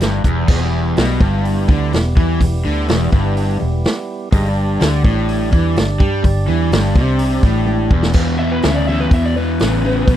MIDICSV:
0, 0, Header, 1, 6, 480
1, 0, Start_track
1, 0, Key_signature, 1, "minor"
1, 0, Tempo, 479233
1, 490, Time_signature, 4, 2, 24, 8
1, 10184, End_track
2, 0, Start_track
2, 0, Title_t, "Lead electric guitar"
2, 0, Program_c, 0, 29
2, 8403, Note_on_c, 0, 76, 89
2, 8522, Note_off_c, 0, 76, 0
2, 8529, Note_on_c, 0, 71, 74
2, 8645, Note_off_c, 0, 71, 0
2, 8648, Note_on_c, 0, 76, 75
2, 8764, Note_off_c, 0, 76, 0
2, 8778, Note_on_c, 0, 74, 79
2, 8885, Note_off_c, 0, 74, 0
2, 8885, Note_on_c, 0, 76, 83
2, 9002, Note_off_c, 0, 76, 0
2, 9017, Note_on_c, 0, 71, 89
2, 9128, Note_off_c, 0, 71, 0
2, 9152, Note_on_c, 0, 76, 77
2, 9271, Note_off_c, 0, 76, 0
2, 9271, Note_on_c, 0, 74, 73
2, 9378, Note_off_c, 0, 74, 0
2, 9378, Note_on_c, 0, 71, 96
2, 10184, Note_off_c, 0, 71, 0
2, 10184, End_track
3, 0, Start_track
3, 0, Title_t, "Tonewheel organ"
3, 0, Program_c, 1, 16
3, 0, Note_on_c, 1, 64, 63
3, 0, Note_on_c, 1, 67, 65
3, 0, Note_on_c, 1, 71, 64
3, 441, Note_off_c, 1, 71, 0
3, 444, Note_off_c, 1, 64, 0
3, 444, Note_off_c, 1, 67, 0
3, 475, Note_on_c, 1, 65, 65
3, 477, Note_on_c, 1, 68, 66
3, 482, Note_on_c, 1, 60, 67
3, 488, Note_on_c, 1, 56, 67
3, 643, Note_off_c, 1, 65, 0
3, 644, Note_off_c, 1, 68, 0
3, 647, Note_off_c, 1, 60, 0
3, 649, Note_off_c, 1, 56, 0
3, 653, Note_on_c, 1, 55, 71
3, 655, Note_on_c, 1, 67, 69
3, 656, Note_on_c, 1, 64, 67
3, 658, Note_on_c, 1, 59, 69
3, 4298, Note_off_c, 1, 55, 0
3, 4299, Note_off_c, 1, 67, 0
3, 4300, Note_off_c, 1, 64, 0
3, 4301, Note_off_c, 1, 59, 0
3, 4324, Note_on_c, 1, 56, 67
3, 4332, Note_on_c, 1, 63, 64
3, 4334, Note_on_c, 1, 68, 66
3, 4340, Note_on_c, 1, 75, 66
3, 4485, Note_on_c, 1, 74, 69
3, 4489, Note_off_c, 1, 56, 0
3, 4490, Note_on_c, 1, 55, 71
3, 4493, Note_off_c, 1, 63, 0
3, 4494, Note_off_c, 1, 68, 0
3, 4496, Note_on_c, 1, 67, 74
3, 4497, Note_off_c, 1, 75, 0
3, 4504, Note_on_c, 1, 62, 70
3, 8128, Note_off_c, 1, 74, 0
3, 8131, Note_off_c, 1, 55, 0
3, 8133, Note_off_c, 1, 67, 0
3, 8138, Note_off_c, 1, 62, 0
3, 8157, Note_on_c, 1, 67, 68
3, 8158, Note_on_c, 1, 64, 71
3, 8162, Note_on_c, 1, 71, 66
3, 8165, Note_on_c, 1, 59, 68
3, 10184, Note_off_c, 1, 59, 0
3, 10184, Note_off_c, 1, 64, 0
3, 10184, Note_off_c, 1, 67, 0
3, 10184, Note_off_c, 1, 71, 0
3, 10184, End_track
4, 0, Start_track
4, 0, Title_t, "Overdriven electric guitar"
4, 0, Program_c, 2, 29
4, 14, Note_on_c, 2, 43, 90
4, 245, Note_off_c, 2, 43, 0
4, 249, Note_on_c, 2, 40, 90
4, 483, Note_off_c, 2, 40, 0
4, 495, Note_on_c, 2, 40, 101
4, 966, Note_off_c, 2, 40, 0
4, 975, Note_on_c, 2, 47, 87
4, 1205, Note_on_c, 2, 43, 104
4, 1206, Note_off_c, 2, 47, 0
4, 1682, Note_off_c, 2, 43, 0
4, 1683, Note_on_c, 2, 50, 98
4, 1921, Note_off_c, 2, 50, 0
4, 1927, Note_on_c, 2, 40, 77
4, 2122, Note_off_c, 2, 40, 0
4, 2172, Note_on_c, 2, 52, 104
4, 2405, Note_off_c, 2, 52, 0
4, 2409, Note_on_c, 2, 40, 70
4, 2603, Note_off_c, 2, 40, 0
4, 2652, Note_on_c, 2, 50, 103
4, 2885, Note_off_c, 2, 50, 0
4, 2885, Note_on_c, 2, 40, 98
4, 3122, Note_off_c, 2, 40, 0
4, 3127, Note_on_c, 2, 43, 100
4, 3602, Note_off_c, 2, 43, 0
4, 3606, Note_on_c, 2, 40, 66
4, 3802, Note_off_c, 2, 40, 0
4, 4330, Note_on_c, 2, 43, 101
4, 4804, Note_off_c, 2, 43, 0
4, 4805, Note_on_c, 2, 50, 96
4, 5042, Note_off_c, 2, 50, 0
4, 5057, Note_on_c, 2, 45, 101
4, 5522, Note_off_c, 2, 45, 0
4, 5526, Note_on_c, 2, 52, 92
4, 5762, Note_off_c, 2, 52, 0
4, 5782, Note_on_c, 2, 43, 78
4, 5969, Note_off_c, 2, 43, 0
4, 6008, Note_on_c, 2, 55, 95
4, 6243, Note_off_c, 2, 55, 0
4, 6245, Note_on_c, 2, 43, 72
4, 6440, Note_off_c, 2, 43, 0
4, 6486, Note_on_c, 2, 52, 104
4, 6722, Note_off_c, 2, 52, 0
4, 6729, Note_on_c, 2, 43, 99
4, 6963, Note_off_c, 2, 43, 0
4, 6973, Note_on_c, 2, 48, 95
4, 7444, Note_off_c, 2, 48, 0
4, 7456, Note_on_c, 2, 45, 89
4, 7922, Note_on_c, 2, 40, 94
4, 7925, Note_off_c, 2, 45, 0
4, 8140, Note_off_c, 2, 40, 0
4, 8152, Note_on_c, 2, 40, 76
4, 8159, Note_on_c, 2, 47, 94
4, 8376, Note_off_c, 2, 40, 0
4, 8379, Note_off_c, 2, 47, 0
4, 8411, Note_on_c, 2, 40, 67
4, 8411, Note_on_c, 2, 47, 85
4, 8625, Note_off_c, 2, 40, 0
4, 8625, Note_off_c, 2, 47, 0
4, 8645, Note_on_c, 2, 40, 76
4, 8650, Note_on_c, 2, 49, 82
4, 8862, Note_off_c, 2, 40, 0
4, 8864, Note_off_c, 2, 49, 0
4, 8898, Note_on_c, 2, 40, 77
4, 8904, Note_on_c, 2, 49, 84
4, 9108, Note_off_c, 2, 40, 0
4, 9111, Note_off_c, 2, 49, 0
4, 9142, Note_on_c, 2, 40, 79
4, 9142, Note_on_c, 2, 47, 84
4, 9350, Note_off_c, 2, 40, 0
4, 9350, Note_off_c, 2, 47, 0
4, 9377, Note_on_c, 2, 40, 67
4, 9384, Note_on_c, 2, 47, 76
4, 9587, Note_off_c, 2, 40, 0
4, 9591, Note_off_c, 2, 47, 0
4, 9624, Note_on_c, 2, 49, 89
4, 9625, Note_on_c, 2, 40, 74
4, 9830, Note_off_c, 2, 49, 0
4, 9831, Note_off_c, 2, 40, 0
4, 9858, Note_on_c, 2, 40, 75
4, 9865, Note_on_c, 2, 49, 75
4, 10067, Note_off_c, 2, 40, 0
4, 10071, Note_off_c, 2, 49, 0
4, 10094, Note_on_c, 2, 40, 78
4, 10098, Note_on_c, 2, 47, 77
4, 10184, Note_off_c, 2, 40, 0
4, 10184, Note_off_c, 2, 47, 0
4, 10184, End_track
5, 0, Start_track
5, 0, Title_t, "Fingered electric bass"
5, 0, Program_c, 3, 33
5, 2, Note_on_c, 3, 31, 81
5, 229, Note_off_c, 3, 31, 0
5, 242, Note_on_c, 3, 28, 75
5, 469, Note_off_c, 3, 28, 0
5, 487, Note_on_c, 3, 28, 90
5, 936, Note_off_c, 3, 28, 0
5, 974, Note_on_c, 3, 35, 94
5, 1196, Note_off_c, 3, 35, 0
5, 1206, Note_on_c, 3, 31, 84
5, 1656, Note_off_c, 3, 31, 0
5, 1694, Note_on_c, 3, 38, 91
5, 1917, Note_off_c, 3, 38, 0
5, 1939, Note_on_c, 3, 28, 83
5, 2160, Note_off_c, 3, 28, 0
5, 2175, Note_on_c, 3, 40, 89
5, 2397, Note_off_c, 3, 40, 0
5, 2406, Note_on_c, 3, 28, 75
5, 2633, Note_off_c, 3, 28, 0
5, 2670, Note_on_c, 3, 38, 89
5, 2885, Note_off_c, 3, 38, 0
5, 2912, Note_on_c, 3, 28, 94
5, 3121, Note_off_c, 3, 28, 0
5, 3127, Note_on_c, 3, 31, 88
5, 3577, Note_off_c, 3, 31, 0
5, 3628, Note_on_c, 3, 28, 79
5, 3845, Note_off_c, 3, 28, 0
5, 4332, Note_on_c, 3, 31, 92
5, 4779, Note_off_c, 3, 31, 0
5, 4821, Note_on_c, 3, 38, 95
5, 5040, Note_off_c, 3, 38, 0
5, 5054, Note_on_c, 3, 33, 92
5, 5500, Note_off_c, 3, 33, 0
5, 5532, Note_on_c, 3, 40, 92
5, 5755, Note_off_c, 3, 40, 0
5, 5785, Note_on_c, 3, 31, 75
5, 6002, Note_off_c, 3, 31, 0
5, 6013, Note_on_c, 3, 43, 84
5, 6236, Note_off_c, 3, 43, 0
5, 6256, Note_on_c, 3, 31, 76
5, 6477, Note_off_c, 3, 31, 0
5, 6497, Note_on_c, 3, 40, 86
5, 6717, Note_off_c, 3, 40, 0
5, 6728, Note_on_c, 3, 31, 89
5, 6953, Note_off_c, 3, 31, 0
5, 6965, Note_on_c, 3, 36, 88
5, 7414, Note_off_c, 3, 36, 0
5, 7445, Note_on_c, 3, 33, 94
5, 7893, Note_off_c, 3, 33, 0
5, 7919, Note_on_c, 3, 28, 89
5, 8147, Note_off_c, 3, 28, 0
5, 8161, Note_on_c, 3, 40, 75
5, 8630, Note_off_c, 3, 40, 0
5, 8661, Note_on_c, 3, 38, 90
5, 9119, Note_off_c, 3, 38, 0
5, 9128, Note_on_c, 3, 40, 83
5, 9592, Note_off_c, 3, 40, 0
5, 9624, Note_on_c, 3, 33, 88
5, 10080, Note_off_c, 3, 33, 0
5, 10097, Note_on_c, 3, 35, 76
5, 10184, Note_off_c, 3, 35, 0
5, 10184, End_track
6, 0, Start_track
6, 0, Title_t, "Drums"
6, 4, Note_on_c, 9, 42, 69
6, 17, Note_on_c, 9, 38, 91
6, 104, Note_off_c, 9, 42, 0
6, 117, Note_off_c, 9, 38, 0
6, 244, Note_on_c, 9, 36, 94
6, 244, Note_on_c, 9, 42, 58
6, 344, Note_off_c, 9, 36, 0
6, 344, Note_off_c, 9, 42, 0
6, 480, Note_on_c, 9, 49, 112
6, 484, Note_on_c, 9, 36, 101
6, 581, Note_off_c, 9, 49, 0
6, 584, Note_off_c, 9, 36, 0
6, 968, Note_on_c, 9, 46, 55
6, 981, Note_on_c, 9, 38, 110
6, 1068, Note_off_c, 9, 46, 0
6, 1081, Note_off_c, 9, 38, 0
6, 1207, Note_on_c, 9, 36, 106
6, 1307, Note_off_c, 9, 36, 0
6, 1452, Note_on_c, 9, 46, 60
6, 1552, Note_off_c, 9, 46, 0
6, 1689, Note_on_c, 9, 36, 102
6, 1789, Note_off_c, 9, 36, 0
6, 1933, Note_on_c, 9, 46, 51
6, 1946, Note_on_c, 9, 38, 91
6, 2033, Note_off_c, 9, 46, 0
6, 2046, Note_off_c, 9, 38, 0
6, 2171, Note_on_c, 9, 36, 105
6, 2272, Note_off_c, 9, 36, 0
6, 2410, Note_on_c, 9, 36, 88
6, 2416, Note_on_c, 9, 46, 63
6, 2510, Note_off_c, 9, 36, 0
6, 2516, Note_off_c, 9, 46, 0
6, 2889, Note_on_c, 9, 46, 56
6, 2902, Note_on_c, 9, 38, 103
6, 2989, Note_off_c, 9, 46, 0
6, 3002, Note_off_c, 9, 38, 0
6, 3130, Note_on_c, 9, 36, 95
6, 3230, Note_off_c, 9, 36, 0
6, 3373, Note_on_c, 9, 46, 62
6, 3473, Note_off_c, 9, 46, 0
6, 3851, Note_on_c, 9, 46, 49
6, 3864, Note_on_c, 9, 38, 95
6, 3951, Note_off_c, 9, 46, 0
6, 3964, Note_off_c, 9, 38, 0
6, 4332, Note_on_c, 9, 36, 103
6, 4332, Note_on_c, 9, 46, 58
6, 4432, Note_off_c, 9, 36, 0
6, 4433, Note_off_c, 9, 46, 0
6, 4814, Note_on_c, 9, 46, 52
6, 4827, Note_on_c, 9, 38, 111
6, 4914, Note_off_c, 9, 46, 0
6, 4927, Note_off_c, 9, 38, 0
6, 5053, Note_on_c, 9, 36, 98
6, 5153, Note_off_c, 9, 36, 0
6, 5294, Note_on_c, 9, 46, 62
6, 5394, Note_off_c, 9, 46, 0
6, 5535, Note_on_c, 9, 36, 99
6, 5636, Note_off_c, 9, 36, 0
6, 5772, Note_on_c, 9, 46, 48
6, 5785, Note_on_c, 9, 38, 106
6, 5872, Note_off_c, 9, 46, 0
6, 5885, Note_off_c, 9, 38, 0
6, 6012, Note_on_c, 9, 36, 108
6, 6112, Note_off_c, 9, 36, 0
6, 6252, Note_on_c, 9, 36, 88
6, 6253, Note_on_c, 9, 46, 55
6, 6352, Note_off_c, 9, 36, 0
6, 6353, Note_off_c, 9, 46, 0
6, 6731, Note_on_c, 9, 46, 63
6, 6744, Note_on_c, 9, 38, 112
6, 6831, Note_off_c, 9, 46, 0
6, 6844, Note_off_c, 9, 38, 0
6, 6967, Note_on_c, 9, 36, 101
6, 7067, Note_off_c, 9, 36, 0
6, 7199, Note_on_c, 9, 46, 64
6, 7299, Note_off_c, 9, 46, 0
6, 7442, Note_on_c, 9, 36, 103
6, 7542, Note_off_c, 9, 36, 0
6, 7673, Note_on_c, 9, 48, 55
6, 7773, Note_off_c, 9, 48, 0
6, 7919, Note_on_c, 9, 36, 93
6, 8019, Note_off_c, 9, 36, 0
6, 8040, Note_on_c, 9, 38, 86
6, 8140, Note_off_c, 9, 38, 0
6, 8148, Note_on_c, 9, 49, 109
6, 8158, Note_on_c, 9, 36, 113
6, 8248, Note_off_c, 9, 49, 0
6, 8258, Note_off_c, 9, 36, 0
6, 8637, Note_on_c, 9, 46, 53
6, 8650, Note_on_c, 9, 38, 104
6, 8737, Note_off_c, 9, 46, 0
6, 8750, Note_off_c, 9, 38, 0
6, 9125, Note_on_c, 9, 46, 60
6, 9126, Note_on_c, 9, 36, 118
6, 9225, Note_off_c, 9, 46, 0
6, 9227, Note_off_c, 9, 36, 0
6, 9609, Note_on_c, 9, 46, 52
6, 9622, Note_on_c, 9, 38, 90
6, 9709, Note_off_c, 9, 46, 0
6, 9722, Note_off_c, 9, 38, 0
6, 10092, Note_on_c, 9, 36, 113
6, 10093, Note_on_c, 9, 46, 58
6, 10184, Note_off_c, 9, 36, 0
6, 10184, Note_off_c, 9, 46, 0
6, 10184, End_track
0, 0, End_of_file